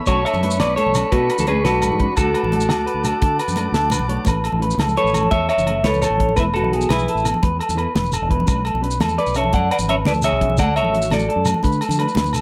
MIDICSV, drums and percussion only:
0, 0, Header, 1, 3, 480
1, 0, Start_track
1, 0, Key_signature, 3, "major"
1, 0, Tempo, 350467
1, 100, Time_signature, 12, 3, 24, 8
1, 16999, End_track
2, 0, Start_track
2, 0, Title_t, "Shekere"
2, 87, Note_on_c, 9, 82, 79
2, 224, Note_off_c, 9, 82, 0
2, 455, Note_on_c, 9, 82, 25
2, 592, Note_off_c, 9, 82, 0
2, 695, Note_on_c, 9, 82, 67
2, 832, Note_off_c, 9, 82, 0
2, 1297, Note_on_c, 9, 82, 84
2, 1434, Note_off_c, 9, 82, 0
2, 1893, Note_on_c, 9, 82, 67
2, 2030, Note_off_c, 9, 82, 0
2, 2497, Note_on_c, 9, 82, 91
2, 2634, Note_off_c, 9, 82, 0
2, 2975, Note_on_c, 9, 82, 89
2, 3112, Note_off_c, 9, 82, 0
2, 3567, Note_on_c, 9, 82, 75
2, 3693, Note_off_c, 9, 82, 0
2, 3693, Note_on_c, 9, 82, 28
2, 3830, Note_off_c, 9, 82, 0
2, 4168, Note_on_c, 9, 82, 87
2, 4305, Note_off_c, 9, 82, 0
2, 4651, Note_on_c, 9, 82, 27
2, 4768, Note_off_c, 9, 82, 0
2, 4768, Note_on_c, 9, 82, 63
2, 4887, Note_off_c, 9, 82, 0
2, 4887, Note_on_c, 9, 82, 29
2, 5024, Note_off_c, 9, 82, 0
2, 5366, Note_on_c, 9, 82, 87
2, 5503, Note_off_c, 9, 82, 0
2, 5838, Note_on_c, 9, 82, 72
2, 5975, Note_off_c, 9, 82, 0
2, 6444, Note_on_c, 9, 82, 60
2, 6581, Note_off_c, 9, 82, 0
2, 6689, Note_on_c, 9, 82, 25
2, 6826, Note_off_c, 9, 82, 0
2, 6940, Note_on_c, 9, 82, 24
2, 7055, Note_off_c, 9, 82, 0
2, 7055, Note_on_c, 9, 82, 73
2, 7192, Note_off_c, 9, 82, 0
2, 7651, Note_on_c, 9, 82, 52
2, 7788, Note_off_c, 9, 82, 0
2, 8131, Note_on_c, 9, 82, 20
2, 8248, Note_off_c, 9, 82, 0
2, 8248, Note_on_c, 9, 82, 73
2, 8385, Note_off_c, 9, 82, 0
2, 8724, Note_on_c, 9, 82, 69
2, 8861, Note_off_c, 9, 82, 0
2, 9329, Note_on_c, 9, 82, 60
2, 9466, Note_off_c, 9, 82, 0
2, 9570, Note_on_c, 9, 82, 25
2, 9707, Note_off_c, 9, 82, 0
2, 9820, Note_on_c, 9, 82, 23
2, 9937, Note_off_c, 9, 82, 0
2, 9937, Note_on_c, 9, 82, 72
2, 10074, Note_off_c, 9, 82, 0
2, 10538, Note_on_c, 9, 82, 58
2, 10675, Note_off_c, 9, 82, 0
2, 11026, Note_on_c, 9, 82, 23
2, 11124, Note_off_c, 9, 82, 0
2, 11124, Note_on_c, 9, 82, 74
2, 11261, Note_off_c, 9, 82, 0
2, 11609, Note_on_c, 9, 82, 82
2, 11746, Note_off_c, 9, 82, 0
2, 12197, Note_on_c, 9, 82, 65
2, 12334, Note_off_c, 9, 82, 0
2, 12446, Note_on_c, 9, 82, 27
2, 12583, Note_off_c, 9, 82, 0
2, 12685, Note_on_c, 9, 82, 28
2, 12799, Note_off_c, 9, 82, 0
2, 12799, Note_on_c, 9, 82, 78
2, 12936, Note_off_c, 9, 82, 0
2, 13405, Note_on_c, 9, 82, 68
2, 13542, Note_off_c, 9, 82, 0
2, 13878, Note_on_c, 9, 82, 28
2, 13999, Note_off_c, 9, 82, 0
2, 13999, Note_on_c, 9, 82, 85
2, 14136, Note_off_c, 9, 82, 0
2, 14482, Note_on_c, 9, 82, 90
2, 14619, Note_off_c, 9, 82, 0
2, 15092, Note_on_c, 9, 82, 71
2, 15229, Note_off_c, 9, 82, 0
2, 15327, Note_on_c, 9, 82, 29
2, 15464, Note_off_c, 9, 82, 0
2, 15685, Note_on_c, 9, 82, 84
2, 15822, Note_off_c, 9, 82, 0
2, 15935, Note_on_c, 9, 82, 26
2, 16052, Note_off_c, 9, 82, 0
2, 16052, Note_on_c, 9, 82, 26
2, 16183, Note_off_c, 9, 82, 0
2, 16183, Note_on_c, 9, 82, 24
2, 16310, Note_off_c, 9, 82, 0
2, 16310, Note_on_c, 9, 82, 61
2, 16447, Note_off_c, 9, 82, 0
2, 16549, Note_on_c, 9, 82, 28
2, 16664, Note_off_c, 9, 82, 0
2, 16664, Note_on_c, 9, 82, 26
2, 16782, Note_off_c, 9, 82, 0
2, 16782, Note_on_c, 9, 82, 22
2, 16905, Note_off_c, 9, 82, 0
2, 16905, Note_on_c, 9, 82, 81
2, 16999, Note_off_c, 9, 82, 0
2, 16999, End_track
3, 0, Start_track
3, 0, Title_t, "Drums"
3, 97, Note_on_c, 9, 63, 73
3, 104, Note_on_c, 9, 42, 60
3, 111, Note_on_c, 9, 36, 78
3, 117, Note_on_c, 9, 68, 57
3, 234, Note_off_c, 9, 63, 0
3, 241, Note_off_c, 9, 42, 0
3, 248, Note_off_c, 9, 36, 0
3, 254, Note_off_c, 9, 68, 0
3, 340, Note_on_c, 9, 64, 25
3, 357, Note_on_c, 9, 42, 44
3, 363, Note_on_c, 9, 68, 60
3, 472, Note_off_c, 9, 64, 0
3, 472, Note_on_c, 9, 64, 64
3, 494, Note_off_c, 9, 42, 0
3, 500, Note_off_c, 9, 68, 0
3, 589, Note_on_c, 9, 63, 86
3, 592, Note_on_c, 9, 42, 50
3, 609, Note_off_c, 9, 64, 0
3, 726, Note_off_c, 9, 63, 0
3, 729, Note_off_c, 9, 42, 0
3, 817, Note_on_c, 9, 68, 60
3, 819, Note_on_c, 9, 38, 77
3, 819, Note_on_c, 9, 42, 64
3, 954, Note_off_c, 9, 68, 0
3, 956, Note_off_c, 9, 38, 0
3, 956, Note_off_c, 9, 42, 0
3, 1059, Note_on_c, 9, 42, 47
3, 1069, Note_on_c, 9, 63, 83
3, 1184, Note_on_c, 9, 64, 67
3, 1196, Note_off_c, 9, 42, 0
3, 1206, Note_off_c, 9, 63, 0
3, 1299, Note_on_c, 9, 38, 26
3, 1299, Note_on_c, 9, 42, 50
3, 1304, Note_on_c, 9, 68, 57
3, 1306, Note_off_c, 9, 64, 0
3, 1306, Note_on_c, 9, 64, 26
3, 1436, Note_off_c, 9, 38, 0
3, 1436, Note_off_c, 9, 42, 0
3, 1441, Note_off_c, 9, 68, 0
3, 1443, Note_off_c, 9, 64, 0
3, 1534, Note_on_c, 9, 42, 62
3, 1540, Note_on_c, 9, 36, 79
3, 1543, Note_on_c, 9, 63, 88
3, 1671, Note_off_c, 9, 42, 0
3, 1677, Note_off_c, 9, 36, 0
3, 1680, Note_off_c, 9, 63, 0
3, 1776, Note_on_c, 9, 42, 50
3, 1777, Note_on_c, 9, 68, 59
3, 1896, Note_on_c, 9, 64, 67
3, 1913, Note_off_c, 9, 42, 0
3, 1913, Note_off_c, 9, 68, 0
3, 2009, Note_on_c, 9, 63, 89
3, 2014, Note_on_c, 9, 42, 45
3, 2020, Note_on_c, 9, 68, 59
3, 2033, Note_off_c, 9, 64, 0
3, 2139, Note_on_c, 9, 64, 26
3, 2146, Note_off_c, 9, 63, 0
3, 2151, Note_off_c, 9, 42, 0
3, 2157, Note_off_c, 9, 68, 0
3, 2255, Note_off_c, 9, 64, 0
3, 2255, Note_on_c, 9, 64, 26
3, 2258, Note_on_c, 9, 38, 71
3, 2258, Note_on_c, 9, 42, 55
3, 2392, Note_off_c, 9, 64, 0
3, 2394, Note_off_c, 9, 38, 0
3, 2394, Note_off_c, 9, 42, 0
3, 2489, Note_on_c, 9, 68, 56
3, 2498, Note_on_c, 9, 63, 76
3, 2503, Note_on_c, 9, 42, 46
3, 2626, Note_off_c, 9, 68, 0
3, 2628, Note_on_c, 9, 64, 59
3, 2635, Note_off_c, 9, 63, 0
3, 2640, Note_off_c, 9, 42, 0
3, 2733, Note_on_c, 9, 42, 44
3, 2739, Note_on_c, 9, 36, 58
3, 2765, Note_off_c, 9, 64, 0
3, 2870, Note_off_c, 9, 42, 0
3, 2876, Note_off_c, 9, 36, 0
3, 2969, Note_on_c, 9, 68, 63
3, 2975, Note_on_c, 9, 42, 57
3, 2978, Note_on_c, 9, 36, 80
3, 2991, Note_on_c, 9, 63, 78
3, 3106, Note_off_c, 9, 68, 0
3, 3112, Note_off_c, 9, 42, 0
3, 3115, Note_off_c, 9, 36, 0
3, 3128, Note_off_c, 9, 63, 0
3, 3212, Note_on_c, 9, 68, 61
3, 3216, Note_on_c, 9, 42, 41
3, 3347, Note_on_c, 9, 64, 67
3, 3349, Note_off_c, 9, 68, 0
3, 3353, Note_off_c, 9, 42, 0
3, 3453, Note_off_c, 9, 64, 0
3, 3453, Note_on_c, 9, 63, 89
3, 3453, Note_on_c, 9, 64, 26
3, 3465, Note_on_c, 9, 42, 46
3, 3576, Note_off_c, 9, 64, 0
3, 3576, Note_on_c, 9, 64, 29
3, 3590, Note_off_c, 9, 63, 0
3, 3602, Note_off_c, 9, 42, 0
3, 3691, Note_on_c, 9, 68, 61
3, 3699, Note_on_c, 9, 38, 73
3, 3699, Note_on_c, 9, 42, 55
3, 3713, Note_off_c, 9, 64, 0
3, 3824, Note_on_c, 9, 64, 26
3, 3828, Note_off_c, 9, 68, 0
3, 3836, Note_off_c, 9, 38, 0
3, 3836, Note_off_c, 9, 42, 0
3, 3936, Note_on_c, 9, 42, 45
3, 3961, Note_off_c, 9, 64, 0
3, 4073, Note_off_c, 9, 42, 0
3, 4174, Note_on_c, 9, 42, 49
3, 4178, Note_on_c, 9, 68, 56
3, 4311, Note_off_c, 9, 42, 0
3, 4315, Note_off_c, 9, 68, 0
3, 4405, Note_on_c, 9, 42, 67
3, 4414, Note_on_c, 9, 36, 89
3, 4419, Note_on_c, 9, 63, 80
3, 4542, Note_off_c, 9, 42, 0
3, 4551, Note_off_c, 9, 36, 0
3, 4556, Note_off_c, 9, 63, 0
3, 4648, Note_on_c, 9, 42, 44
3, 4650, Note_on_c, 9, 68, 58
3, 4769, Note_on_c, 9, 64, 68
3, 4785, Note_off_c, 9, 42, 0
3, 4786, Note_off_c, 9, 68, 0
3, 4874, Note_on_c, 9, 63, 95
3, 4884, Note_on_c, 9, 42, 51
3, 4892, Note_on_c, 9, 68, 53
3, 4906, Note_off_c, 9, 64, 0
3, 5011, Note_off_c, 9, 63, 0
3, 5021, Note_off_c, 9, 42, 0
3, 5029, Note_off_c, 9, 68, 0
3, 5126, Note_on_c, 9, 38, 76
3, 5126, Note_on_c, 9, 42, 61
3, 5243, Note_on_c, 9, 64, 27
3, 5263, Note_off_c, 9, 38, 0
3, 5263, Note_off_c, 9, 42, 0
3, 5340, Note_on_c, 9, 63, 74
3, 5363, Note_on_c, 9, 68, 59
3, 5370, Note_on_c, 9, 42, 46
3, 5380, Note_off_c, 9, 64, 0
3, 5466, Note_on_c, 9, 64, 65
3, 5477, Note_off_c, 9, 63, 0
3, 5500, Note_off_c, 9, 68, 0
3, 5507, Note_off_c, 9, 42, 0
3, 5603, Note_off_c, 9, 64, 0
3, 5607, Note_on_c, 9, 42, 50
3, 5707, Note_on_c, 9, 64, 27
3, 5744, Note_off_c, 9, 42, 0
3, 5818, Note_on_c, 9, 63, 82
3, 5844, Note_off_c, 9, 64, 0
3, 5848, Note_on_c, 9, 36, 74
3, 5849, Note_on_c, 9, 42, 62
3, 5855, Note_on_c, 9, 68, 61
3, 5955, Note_off_c, 9, 63, 0
3, 5985, Note_off_c, 9, 36, 0
3, 5986, Note_off_c, 9, 42, 0
3, 5992, Note_off_c, 9, 68, 0
3, 6081, Note_on_c, 9, 68, 57
3, 6092, Note_on_c, 9, 42, 48
3, 6193, Note_on_c, 9, 64, 71
3, 6218, Note_off_c, 9, 68, 0
3, 6229, Note_off_c, 9, 42, 0
3, 6330, Note_off_c, 9, 64, 0
3, 6332, Note_on_c, 9, 42, 45
3, 6469, Note_off_c, 9, 42, 0
3, 6557, Note_on_c, 9, 63, 84
3, 6567, Note_on_c, 9, 38, 68
3, 6567, Note_on_c, 9, 42, 55
3, 6569, Note_on_c, 9, 68, 58
3, 6672, Note_on_c, 9, 64, 67
3, 6694, Note_off_c, 9, 63, 0
3, 6704, Note_off_c, 9, 38, 0
3, 6704, Note_off_c, 9, 42, 0
3, 6706, Note_off_c, 9, 68, 0
3, 6809, Note_off_c, 9, 64, 0
3, 6809, Note_on_c, 9, 42, 45
3, 6946, Note_off_c, 9, 42, 0
3, 7043, Note_on_c, 9, 42, 45
3, 7044, Note_on_c, 9, 68, 56
3, 7161, Note_on_c, 9, 64, 67
3, 7180, Note_off_c, 9, 42, 0
3, 7181, Note_off_c, 9, 68, 0
3, 7276, Note_on_c, 9, 63, 84
3, 7282, Note_on_c, 9, 42, 60
3, 7286, Note_on_c, 9, 36, 80
3, 7298, Note_off_c, 9, 64, 0
3, 7413, Note_off_c, 9, 63, 0
3, 7419, Note_off_c, 9, 42, 0
3, 7423, Note_off_c, 9, 36, 0
3, 7518, Note_on_c, 9, 68, 58
3, 7527, Note_on_c, 9, 42, 45
3, 7647, Note_on_c, 9, 64, 66
3, 7655, Note_off_c, 9, 68, 0
3, 7664, Note_off_c, 9, 42, 0
3, 7763, Note_on_c, 9, 68, 59
3, 7770, Note_on_c, 9, 42, 49
3, 7784, Note_off_c, 9, 64, 0
3, 7900, Note_off_c, 9, 68, 0
3, 7907, Note_off_c, 9, 42, 0
3, 8001, Note_on_c, 9, 63, 90
3, 8004, Note_on_c, 9, 38, 80
3, 8004, Note_on_c, 9, 42, 56
3, 8135, Note_on_c, 9, 64, 71
3, 8138, Note_off_c, 9, 63, 0
3, 8141, Note_off_c, 9, 38, 0
3, 8141, Note_off_c, 9, 42, 0
3, 8249, Note_on_c, 9, 68, 53
3, 8253, Note_on_c, 9, 42, 49
3, 8272, Note_off_c, 9, 64, 0
3, 8386, Note_off_c, 9, 68, 0
3, 8390, Note_off_c, 9, 42, 0
3, 8491, Note_on_c, 9, 42, 51
3, 8495, Note_on_c, 9, 36, 58
3, 8611, Note_on_c, 9, 64, 70
3, 8628, Note_off_c, 9, 42, 0
3, 8632, Note_off_c, 9, 36, 0
3, 8721, Note_on_c, 9, 68, 62
3, 8734, Note_on_c, 9, 42, 66
3, 8736, Note_on_c, 9, 36, 74
3, 8739, Note_on_c, 9, 63, 76
3, 8748, Note_off_c, 9, 64, 0
3, 8858, Note_off_c, 9, 68, 0
3, 8871, Note_off_c, 9, 42, 0
3, 8873, Note_off_c, 9, 36, 0
3, 8876, Note_off_c, 9, 63, 0
3, 8952, Note_on_c, 9, 68, 58
3, 8980, Note_on_c, 9, 42, 45
3, 9089, Note_off_c, 9, 68, 0
3, 9099, Note_on_c, 9, 64, 59
3, 9116, Note_off_c, 9, 42, 0
3, 9220, Note_on_c, 9, 42, 51
3, 9235, Note_off_c, 9, 64, 0
3, 9357, Note_off_c, 9, 42, 0
3, 9437, Note_on_c, 9, 68, 60
3, 9455, Note_on_c, 9, 38, 73
3, 9455, Note_on_c, 9, 42, 63
3, 9457, Note_on_c, 9, 63, 71
3, 9570, Note_on_c, 9, 64, 62
3, 9574, Note_off_c, 9, 68, 0
3, 9592, Note_off_c, 9, 38, 0
3, 9592, Note_off_c, 9, 42, 0
3, 9594, Note_off_c, 9, 63, 0
3, 9699, Note_on_c, 9, 42, 48
3, 9707, Note_off_c, 9, 64, 0
3, 9836, Note_off_c, 9, 42, 0
3, 9933, Note_on_c, 9, 68, 56
3, 9948, Note_on_c, 9, 42, 50
3, 10054, Note_on_c, 9, 64, 68
3, 10070, Note_off_c, 9, 68, 0
3, 10085, Note_off_c, 9, 42, 0
3, 10174, Note_on_c, 9, 63, 88
3, 10179, Note_on_c, 9, 36, 80
3, 10189, Note_on_c, 9, 42, 63
3, 10191, Note_off_c, 9, 64, 0
3, 10311, Note_off_c, 9, 63, 0
3, 10316, Note_off_c, 9, 36, 0
3, 10326, Note_off_c, 9, 42, 0
3, 10416, Note_on_c, 9, 68, 57
3, 10424, Note_on_c, 9, 42, 45
3, 10548, Note_on_c, 9, 64, 71
3, 10553, Note_off_c, 9, 68, 0
3, 10561, Note_off_c, 9, 42, 0
3, 10657, Note_on_c, 9, 68, 53
3, 10664, Note_on_c, 9, 42, 42
3, 10685, Note_off_c, 9, 64, 0
3, 10794, Note_off_c, 9, 68, 0
3, 10801, Note_off_c, 9, 42, 0
3, 10896, Note_on_c, 9, 63, 86
3, 10900, Note_on_c, 9, 38, 73
3, 10900, Note_on_c, 9, 42, 52
3, 11010, Note_on_c, 9, 64, 64
3, 11033, Note_off_c, 9, 63, 0
3, 11037, Note_off_c, 9, 38, 0
3, 11037, Note_off_c, 9, 42, 0
3, 11142, Note_on_c, 9, 42, 45
3, 11143, Note_on_c, 9, 68, 60
3, 11147, Note_off_c, 9, 64, 0
3, 11279, Note_off_c, 9, 42, 0
3, 11280, Note_off_c, 9, 68, 0
3, 11377, Note_on_c, 9, 36, 63
3, 11379, Note_on_c, 9, 42, 44
3, 11504, Note_on_c, 9, 64, 72
3, 11514, Note_off_c, 9, 36, 0
3, 11516, Note_off_c, 9, 42, 0
3, 11604, Note_on_c, 9, 63, 71
3, 11615, Note_on_c, 9, 68, 58
3, 11616, Note_on_c, 9, 36, 79
3, 11616, Note_on_c, 9, 42, 57
3, 11641, Note_off_c, 9, 64, 0
3, 11741, Note_off_c, 9, 63, 0
3, 11752, Note_off_c, 9, 68, 0
3, 11753, Note_off_c, 9, 36, 0
3, 11753, Note_off_c, 9, 42, 0
3, 11846, Note_on_c, 9, 68, 63
3, 11867, Note_on_c, 9, 42, 44
3, 11983, Note_off_c, 9, 68, 0
3, 11984, Note_on_c, 9, 64, 64
3, 12004, Note_off_c, 9, 42, 0
3, 12103, Note_on_c, 9, 42, 47
3, 12121, Note_off_c, 9, 64, 0
3, 12240, Note_off_c, 9, 42, 0
3, 12329, Note_on_c, 9, 63, 74
3, 12334, Note_on_c, 9, 38, 79
3, 12334, Note_on_c, 9, 42, 60
3, 12344, Note_on_c, 9, 68, 65
3, 12441, Note_on_c, 9, 64, 65
3, 12466, Note_off_c, 9, 63, 0
3, 12471, Note_off_c, 9, 38, 0
3, 12471, Note_off_c, 9, 42, 0
3, 12481, Note_off_c, 9, 68, 0
3, 12578, Note_off_c, 9, 64, 0
3, 12580, Note_on_c, 9, 42, 47
3, 12717, Note_off_c, 9, 42, 0
3, 12816, Note_on_c, 9, 68, 56
3, 12823, Note_on_c, 9, 42, 55
3, 12925, Note_on_c, 9, 64, 67
3, 12953, Note_off_c, 9, 68, 0
3, 12960, Note_off_c, 9, 42, 0
3, 13049, Note_on_c, 9, 63, 84
3, 13061, Note_off_c, 9, 64, 0
3, 13061, Note_on_c, 9, 42, 64
3, 13062, Note_on_c, 9, 36, 82
3, 13186, Note_off_c, 9, 63, 0
3, 13198, Note_off_c, 9, 42, 0
3, 13199, Note_off_c, 9, 36, 0
3, 13303, Note_on_c, 9, 42, 51
3, 13304, Note_on_c, 9, 68, 57
3, 13415, Note_on_c, 9, 64, 71
3, 13440, Note_off_c, 9, 42, 0
3, 13441, Note_off_c, 9, 68, 0
3, 13543, Note_on_c, 9, 42, 50
3, 13546, Note_on_c, 9, 68, 55
3, 13552, Note_off_c, 9, 64, 0
3, 13680, Note_off_c, 9, 42, 0
3, 13683, Note_off_c, 9, 68, 0
3, 13771, Note_on_c, 9, 63, 91
3, 13785, Note_on_c, 9, 38, 78
3, 13785, Note_on_c, 9, 42, 57
3, 13887, Note_on_c, 9, 64, 73
3, 13907, Note_off_c, 9, 63, 0
3, 13922, Note_off_c, 9, 38, 0
3, 13922, Note_off_c, 9, 42, 0
3, 14024, Note_off_c, 9, 64, 0
3, 14027, Note_on_c, 9, 42, 48
3, 14030, Note_on_c, 9, 68, 57
3, 14164, Note_off_c, 9, 42, 0
3, 14167, Note_off_c, 9, 68, 0
3, 14263, Note_on_c, 9, 36, 59
3, 14263, Note_on_c, 9, 42, 48
3, 14376, Note_on_c, 9, 64, 74
3, 14400, Note_off_c, 9, 36, 0
3, 14400, Note_off_c, 9, 42, 0
3, 14495, Note_off_c, 9, 64, 0
3, 14495, Note_on_c, 9, 63, 80
3, 14495, Note_on_c, 9, 64, 28
3, 14504, Note_on_c, 9, 36, 82
3, 14505, Note_on_c, 9, 42, 61
3, 14508, Note_on_c, 9, 68, 66
3, 14632, Note_off_c, 9, 63, 0
3, 14632, Note_off_c, 9, 64, 0
3, 14640, Note_off_c, 9, 36, 0
3, 14642, Note_off_c, 9, 42, 0
3, 14645, Note_off_c, 9, 68, 0
3, 14737, Note_on_c, 9, 68, 62
3, 14749, Note_on_c, 9, 42, 46
3, 14855, Note_on_c, 9, 64, 70
3, 14874, Note_off_c, 9, 68, 0
3, 14886, Note_off_c, 9, 42, 0
3, 14991, Note_on_c, 9, 42, 45
3, 14992, Note_off_c, 9, 64, 0
3, 15128, Note_off_c, 9, 42, 0
3, 15208, Note_on_c, 9, 63, 77
3, 15221, Note_on_c, 9, 68, 63
3, 15229, Note_on_c, 9, 38, 74
3, 15229, Note_on_c, 9, 42, 52
3, 15337, Note_on_c, 9, 64, 66
3, 15345, Note_off_c, 9, 63, 0
3, 15358, Note_off_c, 9, 68, 0
3, 15366, Note_off_c, 9, 38, 0
3, 15366, Note_off_c, 9, 42, 0
3, 15453, Note_off_c, 9, 64, 0
3, 15453, Note_on_c, 9, 64, 27
3, 15474, Note_on_c, 9, 42, 45
3, 15589, Note_off_c, 9, 64, 0
3, 15611, Note_off_c, 9, 42, 0
3, 15691, Note_on_c, 9, 68, 57
3, 15695, Note_on_c, 9, 64, 27
3, 15711, Note_on_c, 9, 42, 47
3, 15807, Note_off_c, 9, 64, 0
3, 15807, Note_on_c, 9, 64, 73
3, 15828, Note_off_c, 9, 68, 0
3, 15848, Note_off_c, 9, 42, 0
3, 15925, Note_off_c, 9, 64, 0
3, 15925, Note_on_c, 9, 63, 87
3, 15925, Note_on_c, 9, 64, 26
3, 15945, Note_on_c, 9, 36, 77
3, 15953, Note_on_c, 9, 42, 60
3, 16062, Note_off_c, 9, 63, 0
3, 16062, Note_off_c, 9, 64, 0
3, 16082, Note_off_c, 9, 36, 0
3, 16090, Note_off_c, 9, 42, 0
3, 16175, Note_on_c, 9, 68, 58
3, 16185, Note_on_c, 9, 42, 44
3, 16289, Note_on_c, 9, 64, 73
3, 16312, Note_off_c, 9, 68, 0
3, 16322, Note_off_c, 9, 42, 0
3, 16420, Note_on_c, 9, 68, 55
3, 16426, Note_off_c, 9, 64, 0
3, 16429, Note_on_c, 9, 42, 42
3, 16557, Note_off_c, 9, 68, 0
3, 16565, Note_off_c, 9, 42, 0
3, 16639, Note_on_c, 9, 63, 88
3, 16670, Note_on_c, 9, 38, 77
3, 16670, Note_on_c, 9, 42, 59
3, 16766, Note_on_c, 9, 64, 63
3, 16776, Note_off_c, 9, 63, 0
3, 16807, Note_off_c, 9, 38, 0
3, 16807, Note_off_c, 9, 42, 0
3, 16886, Note_on_c, 9, 68, 58
3, 16903, Note_off_c, 9, 64, 0
3, 16909, Note_on_c, 9, 42, 50
3, 16999, Note_off_c, 9, 42, 0
3, 16999, Note_off_c, 9, 68, 0
3, 16999, End_track
0, 0, End_of_file